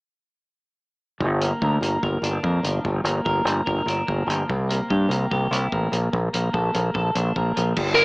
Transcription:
1.20 G1 G2, kick
1.41 A#3, closed hi-hat
1.62 D2 A#4, kick
1.81 G1 A#3, closed hi-hat
2.03 G1 A#4, kick
2.22 G1 D4, closed hi-hat
2.44 F2 A#3, kick
2.63 G1 F3, closed hi-hat
2.84 G1 G2, kick
3.04 G1 A#3, closed hi-hat
3.25 G1 A#4, kick
3.45 G1 A#3, closed hi-hat
3.66 G1 A#4, kick
3.86 G1 D4, closed hi-hat
4.07 G1 A#3, kick
4.27 G1 F3, closed hi-hat
4.49 C2 C3, kick
4.69 A#3, closed hi-hat
4.90 G2 G4, kick
5.09 C2 A#3, closed hi-hat
5.31 C2 G4, kick
5.51 C2 E4, closed hi-hat
5.72 A1 A#3, kick
5.92 A#1 A#2, closed hi-hat
6.12 A#1 A#2, kick
6.33 A#1 A#3, closed hi-hat
6.53 A#1 A4, kick
6.74 A#1 A#3, closed hi-hat
6.94 A#1 A4, kick
7.15 A#1 D4, closed hi-hat
7.36 A#1 A#3, kick
7.56 A#1 F3, closed hi-hat
7.76 G1 G2, kick, crash
7.95 D3 A#4, closed hi-hat

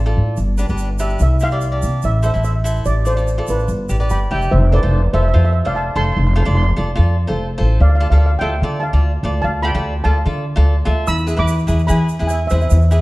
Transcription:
Already playing: A1 D6
0.06 F4 A4 D5
0.17 A2
0.37 G1, shaker
0.58 D4 G4 B4, shaker
0.69 G1 D4 G4 B4, shaker
0.78 shaker
0.99 D4 G4 B4 E5, shaker
1.10 shaker
1.19 C2 E5, shaker
1.40 E4 G4 C5 F5, shaker
1.51 E4 G4 D5, shaker
1.61 shaker
1.72 D4 G4 D5
1.82 C3, shaker
2.02 A1 E5, shaker
2.22 E4 A4 C5 E5, shaker
2.34 A1 E4 A4 C5, shaker
2.44 E5, shaker
2.64 E4 A4 C5, shaker
2.85 A1 D5, shaker
3.05 F4 A4 C5 D5, shaker
3.17 F4 A4 D5, shaker
3.28 shaker
3.38 F4 A4 D5
3.47 A1 B4, shaker
3.59 shaker
3.68 G1, shaker
3.89 A1 G4 B4 D5, shaker
4.00 G4 B4 D5, shaker
4.10 G1 G5 B5, shaker
4.31 F1 G4 B4 D5 E5 G5
4.42 shaker
4.51 F1 C5 E5
4.72 F4 A4 B4 C5 D5
4.83 F1 F4 A4 C5
5.13 F1 F4 A4 C5 E5
5.23 E5
5.28 E5
5.34 F2 F4 A4 C5 E5
5.45 E5
5.53 E5
5.65 F1 F4 A4 C5 D5 F5
5.75 F5 A5
5.95 F1 F4 A4 C5 A5 C6
6.05 C6
6.12 C6
6.16 F1 C6
6.27 C6
6.34 F4 A4 C5 C6
6.42 F4 A4 D5 C6
6.47 F1 C6
6.55 C6
6.63 C6
6.76 F1 F4 A4 D5
6.95 F2 F4 A4 D5
7.27 F1 F4 A4 C5
7.58 A1 F4 A4 C5
7.80 D2 D5 F5
7.89 F5
7.95 F5
8.00 F4 A4 D5 F5
8.10 D2 F4 A4 D5 F5
8.18 F5
8.26 F5
8.39 D2 F4 A4 E5 F5 G5
8.62 D3 F4 A4 D5
8.80 F5 A5
8.93 D2 F4 A4 D5
9.23 D2 F4 A4 D5
9.42 D2 F5 A5
9.62 F4 A4 D5 G5 B5
9.75 D2 F4 A4 D5
10.04 D2 F4 A4 D5 F5 A5
10.26 D3 F4 A4 D5
10.56 D2 F4 A4 D5
10.85 D2 F4 A4 E5
11.07 E2 B5 E6, shaker
11.18 shaker
11.27 E4 G#4 B4, shaker
11.37 E2 E4 G#4 B4 B5 D6
11.48 shaker
11.59 shaker
11.67 E2 E4 G#4 B4, shaker
11.79 shaker
11.87 E3 E4 G#4 B4 G#5 B5, shaker
12.09 shaker
12.19 E2 E4 G#4 B4, shaker
12.27 E5 G#5, shaker
12.47 E4 G#4 B4 C5 E5, shaker
12.52 E2
12.56 E5
12.61 E5, shaker
12.70 E2 E5, shaker
12.78 E5, shaker
12.85 E5
12.91 E4 G#4 B4 E5, shaker

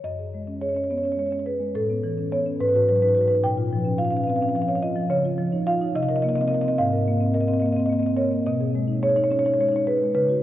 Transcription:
0.04 F#2 D#5
0.19 G#4
0.34 G#3
0.47 C#4
0.61 G#4 C#5
0.69 C#5
0.75 C#4 C#5
0.84 C#5
0.90 B3 C#5
0.98 C#5
1.04 C#4 C#5
1.12 C#5
1.17 G#3 C#5
1.26 C#5
1.31 C#4 C#5
1.40 C#5
1.46 G#4 B4
1.60 G#3
1.75 A2 A4
1.90 B3
2.03 E3
2.18 C#4
2.32 B3 C#5
2.46 C#4
2.60 G#2 B4
2.69 B4
2.74 F#4 B4
2.82 B4
2.88 F#3 B4
2.96 B4
3.02 D#4 B4
3.08 B4
3.15 F#4 B4
3.21 B4
3.28 D#4 B4
3.35 B4
3.44 A#2 G5
3.57 F4
3.73 F3
3.85 C#4
3.98 F4 F5
4.05 F5
4.10 C#4 F5
4.17 F5
4.24 C4 F5
4.30 F5
4.36 F5
4.41 C#4 F5
4.49 F5
4.55 F3 F5
4.62 F5
4.68 C#5 F5
4.75 F5
4.82 F4 D#5
4.96 F3
5.10 C#3 C#5
5.25 F4
5.38 F3
5.52 D#4
5.67 F4 F5
5.81 D#4
5.95 C3 D#5
6.03 D#5
6.09 A#4 D#5
6.16 D#5
6.22 A#3 D#5
6.29 D#5
6.36 C4 D#5
6.41 D#5
6.48 A#4 D#5
6.54 D#5
6.61 C4 D#5
6.68 D#5
6.78 G#2 F5
6.93 A#4
7.08 A#3
7.21 C4
7.34 A#4 D#5
7.41 D#5
7.48 C4 D#5
7.54 D#5
7.60 A#3 D#5
7.66 D#5
7.73 D#5
7.77 C4 D#5
7.86 A#3 D#5
7.93 D#5
7.99 C4 D#5
8.06 D#5
8.17 A#4 C#5
8.31 A#3
8.46 B2 D#5
8.60 G#4
8.75 G#3
8.88 D#4
9.03 G#4 C#5
9.09 C#5
9.16 D#4 C#5
9.24 C#5
9.31 C#4 C#5
9.39 C#5
9.45 D#4 C#5
9.54 C#5
9.59 G#3 C#5
9.69 D#4 C#5
9.76 C#5
9.87 G#4 B4
10.02 G#3
10.15 C#3 B4
10.29 F#4

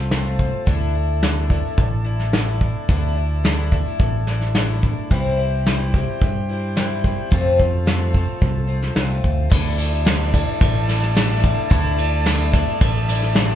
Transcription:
Already playing: C2 F3 A3 C4 F4 A4 C5 A5
0.11 F3 A3 C4 F4, snare, closed hi-hat
0.39 kick
0.66 D2 D3 A3 D4 E4 D5, kick, closed hi-hat
0.95 A3 D4 E4
1.22 D3 A3 D4 E4, snare, closed hi-hat
1.49 A3 D4 E4, kick
1.78 A1, kick, closed hi-hat
2.04 A3 D4 E4
2.20 snare
2.32 D3 A3 D4 E4, snare, closed hi-hat
2.61 kick
2.88 D2 D3 A3 D4 E4, kick, closed hi-hat
3.15 A3 D4 E4
3.43 D3 A3 D4 E4, snare, closed hi-hat
3.72 A3 D4 E4, kick
3.99 A1, kick, closed hi-hat
4.27 A3 D4 E4, snare
4.41 snare
4.55 D3 A3 D4 E4, snare, closed hi-hat
4.83 kick
5.10 C2 C3 E3 G3 C4 E4 G4 C5 G5, kick, closed hi-hat
5.37 G3 C4 E4
5.66 E3 G3 C4 E4, snare, closed hi-hat
5.94 G3 C4 E4, kick
6.21 G2, kick, closed hi-hat
6.49 G3 C4 E4
6.76 E3 G3 C4 E4, snare, closed hi-hat
7.04 kick
7.31 F2 C3 F3 A3 C4 F4 A4 A5, kick, closed hi-hat
7.58 F3 A3 C4 F4, kick
7.86 F3 A3 C4 F4, snare, closed hi-hat
8.13 F3 A3 C4 F4, kick
8.42 C2, kick, closed hi-hat
8.67 F3 A3 C4 F4
8.82 snare
8.95 C2 F3 A3 C4 F4, snare, closed hi-hat
9.24 D2, kick
9.50 D2 D3 A3 D4 E4 A4 D5 A5, kick, crash, shaker
9.77 A3 D4 E4, ride, shaker
9.93 shaker
10.05 D3 A3 D4 E4, snare, ride, shaker
10.33 A3 D4 E4, kick, ride, shaker
10.61 A1, kick, ride, shaker
10.87 A3 D4 E4, snare, ride, shaker
11.03 snare, shaker
11.15 D3 A3 D4 E4, snare, ride, shaker
11.43 kick, ride, shaker
11.58 shaker
11.69 D2 D3 A3 D4 E4, kick, ride, shaker
11.97 A3 D4 E4, ride, shaker
12.13 shaker
12.24 D3 A3 D4 E4, snare, ride, shaker
12.52 A3 D4 E4, kick, ride, shaker
12.81 A1, kick, ride, shaker
13.08 A3 D4 E4, snare, ride, shaker
13.22 snare, shaker
13.34 D3 A3 D4 E4, snare, ride, shaker

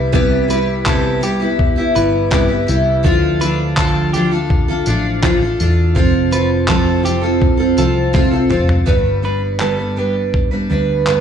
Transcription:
Already playing: C2 G3 B3 E4 G4
0.12 C3 G3 B3 E4 G4, kick
0.48 G3 B3 E4 G4 B4, tambourine
0.86 C3 G3 B3 E4 G4 A4, kick, clap
1.21 G3 B3 E4 G4, tambourine
1.40 B3 E4 G4
1.59 kick
1.76 B3 E4 G4
1.95 G1 G3 B3 E4 G4 B4, tambourine
2.31 C3 G3 B3 E4 G4, kick, clap
2.48 B3 E4 G4
2.67 C2 G3 B3 E4 G4, tambourine
3.03 D2 D3 F3 D4 F4 A4, kick
3.40 F3 D4 F4 A4 B4, tambourine
3.77 D3 F3 D4 F4 A4, kick, clap
4.13 F3 D4 F4 G4 A4, tambourine
4.31 D4 F4 A4
4.50 kick
4.68 D4 F4 A4
4.86 A1 F3 D4 F4 A4, tambourine
5.22 D3 F3 D4 F4 A4, kick, clap
5.41 D4 F4 A4
5.60 E2 D4 F4 A4, tambourine
5.95 F1 F3 C4 F4 A4, kick
6.31 F3 C4 F4 A4 B4, tambourine
6.67 F3 C4 F4 A4, kick, clap
7.03 F3 C4 F4 G4 A4, tambourine
7.21 C4 F4 A4
7.42 kick
7.57 C4 F4 A4
7.77 C2 F3 C4 F4 A4, tambourine
8.13 F3 C4 F4 A4, kick, snare
8.31 C4 F4 A4
8.49 F1 F3 C4 F4 A4, mid tom
8.69 floor tom
8.86 G1 G2 D3 G3 B3 D4 B4, kick
9.22 G3 B3 D4 B4
9.60 G2 D3 G3 B3 D4 A4 B4, clap
9.78 G3 B3 D4 B4
9.96 G3 B3 D4 G4 B4
10.34 kick
10.51 G3 B3 D4 B4
10.70 D2 G3 B3 D4 B4
11.07 G2 D3 G3 B3 D4 B4, clap

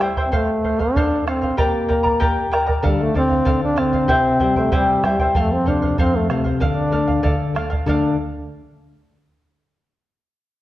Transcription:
Already playing: G3
0.00 E4 C5 E5 G5, bombo rim
0.17 E4 C5 G5, bombo low
0.27 C4
0.32 A3 A4 C5 F5, bombo low
0.64 A4 C5 F5, bombo low
0.79 D4 C5 F5, bombo low
0.96 A4 C5 F5, bombo low
1.27 C4 A4 C5 F5, bombo rim
1.42 C5 F5, bombo low
1.57 A#3 G4 A#4 D5 G5 A#5, bombo low
1.88 A#4 D5 G5 A#5, bombo low
2.03 A#4 D5 A#5, bombo low
2.20 G4 A#4 D5 G5 A#5, bombo low
2.52 A#4 D5 G5 A#5, bombo rim
2.66 A#4 D5 A#5, bombo low
2.83 D3 G3 A4 D5 F5, bombo low
3.01 A3
3.15 D3 C4 A4 D5 F5, bombo low
3.30 D5 F5, bombo low
3.45 D3 A4 D5 F5, bombo low
3.64 D4
3.76 D3 C4 A4 D5 F5, bombo rim
3.93 D5 F5, bombo low
4.08 C3 E4 G4 C5 E5 G5, bombo low
4.40 G3 E4 C5 E5 G5, bombo low
4.55 A3 E4 C5 G5, bombo low
4.71 C3 G3 E4 G4 C5 E5 G5, bombo low
5.03 G3 E4 C5 E5 G5, bombo rim
5.19 E4 C5 G5, bombo low
5.34 F2 A3 A4 C5 F5, bombo low
5.53 C4
5.65 C3 D4 A4 C5 F5, bombo low
5.82 C5 F5, bombo low
5.98 F2 C4 A4 C5 F5, bombo low
6.16 A3
6.30 C3 A3 A4 C5 F5, bombo rim
6.44 C5 F5, bombo low
6.60 D3 D4 A4 D5 F5, bombo low
6.92 A3 A4 D5 F5, bombo low
7.08 D5 F5, bombo low
7.23 D3 A4 D5 F5, bombo low
7.55 A3 A4 D5 F5, bombo rim
7.70 D5 F5, bombo low
7.86 D3 A3 D4 A4 D5 F5, bombo low

